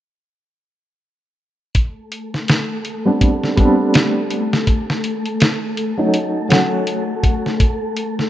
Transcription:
1.75 synth texture A3 A4, kick, closed hi-hat
2.12 closed hi-hat
2.34 snare
2.48 snare, closed hi-hat
2.85 closed hi-hat
3.05 felt piano G3 B3 C4 D4
3.21 kick, closed hi-hat
3.44 snare
3.57 felt piano G3 B3 C4 D4, kick, closed hi-hat
3.94 snare, closed hi-hat
4.31 closed hi-hat
4.53 snare
4.67 kick, closed hi-hat
4.90 snare
5.04 closed hi-hat
5.26 closed hi-hat
5.40 snare, closed hi-hat
5.77 closed hi-hat
5.98 felt piano F#3 A3 C#4 D#4
6.14 closed hi-hat
6.49 felt piano F#3 A3 C#4 F#4, snare, closed hi-hat
6.87 closed hi-hat
7.23 kick, closed hi-hat
7.46 snare
7.60 kick, closed hi-hat
7.97 closed hi-hat
8.19 snare

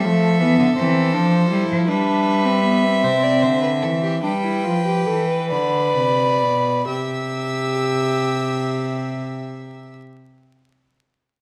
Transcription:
Already playing: violin A4 E5
0.05 cello F3, viola A3
0.40 cello E3, viola B3
0.59 cello D3
0.76 cello E3, viola C4, violin C5
1.14 cello F3, viola D4
1.51 cello G3, viola E4
1.69 cello F3
1.88 cello G3, viola D4, violin B4 E5
2.45 viola C4
2.64 viola B3
2.84 viola C4
3.03 cello C3, violin C5
3.23 violin D5
3.42 cello D3, violin C5
3.62 violin B4
3.82 cello E3, violin A4
4.02 violin G4
4.22 cello G3, viola D4, violin B4 G5
4.43 viola E4
4.64 cello F3, viola F4
4.85 viola G4
5.06 cello E3, viola A4
5.29 viola B4
5.50 cello D3, violin D5 B5
5.96 cello C3
6.42 cello B2
6.87 cello C3, viola G4, violin E5 E6

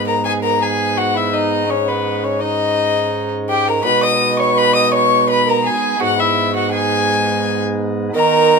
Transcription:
Already playing: pipe organ G#2 G#3 B3 D#4, bassoon G#2
0.06 violin A#4 A#5
0.25 violin G#4 G#5
0.42 violin A#4 A#5
0.61 violin G#4 G#5
0.97 violin F#4 F#5
1.15 violin E4 E5
1.34 violin D#4 D#5
1.66 pipe organ C#4 D#4, violin C#4 C#5
1.88 violin B3 B4
2.24 violin C#4 C#5
2.41 violin D#4 D#5
3.49 violin G4 G5
3.68 violin A#4 A#5
3.81 pipe organ G#3 B3 D#4, violin B4 B5
3.85 bassoon B2, pipe organ B2
4.03 violin D#5 D#6
4.39 violin C#5 C#6
4.57 violin B4 B5
4.75 violin D#5 D#6
4.92 violin C#5 C#6
5.29 violin B4 B5
5.47 violin A#4 A#5
5.64 violin G#4 G#5
5.97 pipe organ G#3 B3 D#4, violin F#4
6.01 pipe organ G#2, bassoon G#2, violin F#5
6.19 violin E4 E5
6.54 violin F#4 F#5
6.72 violin G#4 G#5
8.12 pipe organ D#3 B3 D#4, bassoon D#3, violin A#4 A#5

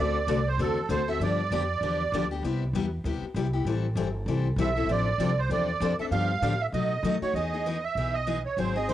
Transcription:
Already playing: upright bass D2
0.00 steel-string acoustic guitar D3 A3 C4 F#4 A4, accordion D5
0.27 upright bass C2, steel-string acoustic guitar D3 A3 C4 F#4 A4
0.48 accordion C5
0.58 upright bass E2, steel-string acoustic guitar D3 A3 C4 F#4 A4, accordion A4
0.89 upright bass D2, steel-string acoustic guitar D3 A3 C4 F#4 A4, accordion C5
1.08 steel-string acoustic guitar C4 F#4 A4, accordion E5
1.20 upright bass G2, steel-string acoustic guitar D3 F3 B3 D4 G4, accordion D5
1.51 upright bass F2, steel-string acoustic guitar D3 F3 B3 D4 G4
1.81 upright bass E2, steel-string acoustic guitar D3 F3 B3 D4 G4
2.12 upright bass D2, steel-string acoustic guitar D3 F3 B3 D4 G4
2.31 steel-string acoustic guitar B3 D4 G4
2.43 upright bass C2, steel-string acoustic guitar C3 G3 B3 E4 G4
2.73 upright bass E2, steel-string acoustic guitar C3 G3 B3 E4 G4
3.04 upright bass D2, steel-string acoustic guitar C3 G3 B3 E4 G4
3.21 muted upright bass stroke
3.34 upright bass C2, steel-string acoustic guitar C3 G3 B3 E4 G4
3.53 steel-string acoustic guitar B3 E4 G4
3.65 upright bass A1, steel-string acoustic guitar E3 G3 C4 E4 A4
3.95 upright bass G1, steel-string acoustic guitar E3 G3 C4 E4 A4
4.26 upright bass C2, steel-string acoustic guitar E3 G3 C4 E4 A4
4.56 upright bass B1, steel-string acoustic guitar E3 G3 C4 E4 A4
4.61 accordion E5
4.77 steel-string acoustic guitar C4 E4 A4
4.87 upright bass A1, steel-string acoustic guitar C3 F3 C4 D4 A4
4.91 accordion D5
5.18 upright bass C2, steel-string acoustic guitar C3 F3 C4 D4 A4
5.39 accordion C5
5.49 upright bass E2, steel-string acoustic guitar C3 F3 C4 D4 A4, accordion D5
5.80 upright bass F2, steel-string acoustic guitar C3 F3 C4 D4 A4
5.99 steel-string acoustic guitar C4 D4 A4, accordion E5, muted upright bass stroke
6.11 upright bass G2, steel-string acoustic guitar D3 F3 B3 D4 G4, accordion F5
6.42 upright bass A2, steel-string acoustic guitar D3 F3 B3 D4 G4
6.61 accordion E5
6.72 upright bass B2, steel-string acoustic guitar B2 F#3 A3 D#4 F#4, accordion D#5
7.03 steel-string acoustic guitar B2 F#3 A3 D#4 F#4, upright bass D#3
7.21 steel-string acoustic guitar A3 D#4 F#4, accordion C#5, muted upright bass stroke
7.34 upright bass E2, steel-string acoustic guitar E3 B3 D#4 G#4, accordion D#5
7.54 steel-string acoustic guitar B3 D#4 G#4
7.66 steel-string acoustic guitar E3 B3 D#4 G#4
7.84 accordion E5
7.95 upright bass B1, steel-string acoustic guitar E3 B3 D#4 G#4
8.14 accordion D#5
8.27 steel-string acoustic guitar E3 B3 D#4 G#4
8.46 accordion C#5
8.57 upright bass G#1, steel-string acoustic guitar D#3 F#3 C4 D#4 G#4, accordion C5
8.76 steel-string acoustic guitar C4 D#4 G#4, accordion D#5
8.89 steel-string acoustic guitar D#3 F#3 C4 D#4 G#4, accordion C5

